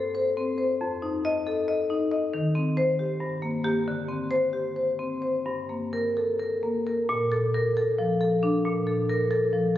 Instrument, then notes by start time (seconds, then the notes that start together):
marimba
Already playing: G2 A4
0.15 C5
0.37 C4
0.58 C5
0.81 F2
1.02 D#4
1.25 D#5
1.47 A4
1.68 D#5
1.90 D#4
2.12 D#5
2.34 D#3
2.55 C4
2.77 C5
2.99 G4
3.20 G2
3.42 A#3
3.64 A#3 G4
3.88 D3
4.09 C4
4.31 C5
4.53 G4
4.76 C5
4.99 C4
5.22 C5
5.46 G2
5.70 A#3
5.93 A#4
6.17 A4
6.39 A#4
6.63 A#3
6.87 A#4
7.09 A#2
7.32 A4
7.54 A#4
7.77 A4
7.98 F3
8.21 A4
8.43 D4
8.65 A#2
8.87 A4
9.10 A#4
9.31 A4
9.53 F3